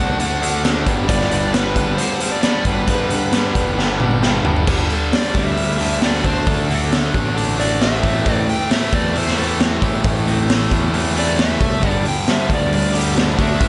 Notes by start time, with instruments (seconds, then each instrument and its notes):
Already playing: picked electric bass C2, overdriven electric guitar D3 A3, clean electric guitar D3 A4, lead electric guitar F#5
0.00 overdriven electric guitar D4, clean electric guitar D4 F#4
0.19 picked electric bass D2, overdriven electric guitar D3 A3 D4, closed hi-hat
0.41 overdriven electric guitar D3 A3 D4, closed hi-hat
0.64 overdriven electric guitar D3 A3 D4, clean electric guitar D3 D4 F#4 A4, snare, closed hi-hat
0.86 picked electric bass G1, overdriven electric guitar G2 D3 G3, clean electric guitar G3 B3 D4 B4, kick, closed hi-hat
1.08 picked electric bass G1, overdriven electric guitar G2 D3 G3, clean electric guitar G3 B3 D4 B4, lead electric guitar D5, kick, closed hi-hat
1.21 snare
1.31 overdriven electric guitar G2 D3 G3, clean electric guitar B3 D4 B4, closed hi-hat
1.53 overdriven electric guitar G2 D3 G3, clean electric guitar G3 B3 D4 B4, lead electric guitar B4, snare, closed hi-hat
1.75 picked electric bass G1, overdriven electric guitar G2 D3 G3, clean electric guitar D4, kick, closed hi-hat
1.97 overdriven electric guitar G2 D3 G3, lead electric guitar C5, closed hi-hat
2.20 overdriven electric guitar G2 D3 G3, closed hi-hat
2.32 lead electric guitar D5
2.42 overdriven electric guitar G2 D3 G3, clean electric guitar G3 B3 D4 B4, lead electric guitar D5, snare, closed hi-hat
2.65 picked electric bass G1, overdriven electric guitar G2 D3 G3, clean electric guitar B3 D4 B4, lead electric guitar B4, kick, closed hi-hat
2.87 picked electric bass G2, overdriven electric guitar G2 D3 G3, clean electric guitar G3 B3 D4 B4, kick, closed hi-hat
3.10 overdriven electric guitar G2 D3 G3, clean electric guitar B3 D4 B4, closed hi-hat
3.32 overdriven electric guitar G2 D3 G3, clean electric guitar G3 B3 D4 B4, snare, closed hi-hat
3.55 picked electric bass E1, overdriven electric guitar G2 D3 G3, clean electric guitar B3 D4 B4, kick, closed hi-hat
3.76 picked electric bass G1, overdriven electric guitar G2 D3 G3, snare
3.99 overdriven electric guitar G2 D3 G3, mid tom
4.11 mid tom
4.22 overdriven electric guitar G2 D3 G3, clean electric guitar G3 B3 D4 B4, snare
4.44 picked electric bass G1, overdriven electric guitar G2 D3 G3, clean electric guitar B3 D4 B4, floor tom
4.56 floor tom
4.66 picked electric bass G1, overdriven electric guitar G2 D3 G3, clean electric guitar G3 B3 D4, kick, crash
4.90 clean electric guitar G3 D4, lead electric guitar A4, open hi-hat
5.12 clean electric guitar G3 D4, lead electric guitar D5, snare, open hi-hat
5.34 picked electric bass D2, clean electric guitar G3 B3 D4, kick, open hi-hat
5.39 lead electric guitar E5
5.57 clean electric guitar G3 D4, open hi-hat
5.78 overdriven electric guitar G2 D3 G3, clean electric guitar G3 D4, open hi-hat
6.01 overdriven electric guitar G2 D3 G3, clean electric guitar G3 B3 D4, lead electric guitar D5, snare, open hi-hat
6.23 picked electric bass D2, overdriven electric guitar D3 A3 D4, clean electric guitar D3 D4 F#4, lead electric guitar C5, kick, open hi-hat
6.47 picked electric bass D2, clean electric guitar D3 D4, lead electric guitar A4, kick, open hi-hat
6.69 clean electric guitar D3 D4 F#4, lead electric guitar A4, open hi-hat
6.92 clean electric guitar D3 D4, snare, open hi-hat
7.14 picked electric bass A1, clean electric guitar D3 D4, kick, open hi-hat
7.34 overdriven electric guitar D3 A3 D4, clean electric guitar D3 D4, open hi-hat
7.57 clean electric guitar D3 D4 F#4, overdriven electric guitar D3 A3 D4, lead electric guitar D5, open hi-hat
7.81 clean electric guitar D3 D4, lead electric guitar E5, snare, open hi-hat
8.02 picked electric bass A1, overdriven electric guitar A2 E3 A3, clean electric guitar A2 A3 C4, kick, open hi-hat
8.25 picked electric bass A1, clean electric guitar A2 A3 C4, kick, open hi-hat
8.34 lead electric guitar D5
8.48 clean electric guitar A2 A3, lead electric guitar G5, open hi-hat
8.70 clean electric guitar A2 A3, lead electric guitar E5, snare, open hi-hat
8.92 picked electric bass E2, clean electric guitar A2 A3 C4, lead electric guitar D5, kick, open hi-hat
9.14 overdriven electric guitar A2 E3 A3, clean electric guitar A2 A3, open hi-hat
9.18 lead electric guitar C5
9.28 snare
9.37 clean electric guitar A2 A3, overdriven electric guitar A2 E3 A3, lead electric guitar A4, open hi-hat
9.60 clean electric guitar A2 A3 C4, snare, open hi-hat
9.81 picked electric bass A1, overdriven electric guitar A2 E3 A3, clean electric guitar A2 A3, kick, open hi-hat
10.04 picked electric bass A1, clean electric guitar A2 A3, kick, open hi-hat
10.27 clean electric guitar A2 A3 C4, open hi-hat
10.50 clean electric guitar A2, snare, open hi-hat
10.71 picked electric bass E2, clean electric guitar A2 A3, kick, open hi-hat
10.93 overdriven electric guitar A2 E3 A3, clean electric guitar A2 A3, open hi-hat
11.15 clean electric guitar A2 A3 C4, overdriven electric guitar A2 E3 A3, lead electric guitar D5, open hi-hat
11.39 clean electric guitar A2 A3, lead electric guitar E5, snare, open hi-hat
11.61 picked electric bass C2, clean electric guitar A2 A3, kick, open hi-hat
11.82 picked electric bass G1, overdriven electric guitar G2 D3 G3, clean electric guitar G3 B3 D4, kick, open hi-hat
11.90 lead electric guitar D5
12.05 clean electric guitar G3 D4, lead electric guitar G5, open hi-hat
12.28 clean electric guitar G3 D4, lead electric guitar E5, snare, open hi-hat
12.50 picked electric bass D2, clean electric guitar G3 B3 D4, kick, open hi-hat
12.54 lead electric guitar D5
12.72 clean electric guitar G3 D4, lead electric guitar D5, open hi-hat
12.92 overdriven electric guitar G2 D3 G3, clean electric guitar G3 D4, open hi-hat
12.98 lead electric guitar G4
13.15 overdriven electric guitar G2 D3 G3, clean electric guitar G3 B3 D4, snare, open hi-hat
13.37 picked electric bass D2, overdriven electric guitar D3 A3 D4, clean electric guitar D3 D4 F#4, kick, open hi-hat
13.42 lead electric guitar E5
13.61 picked electric bass D2, clean electric guitar D3 D4, kick, open hi-hat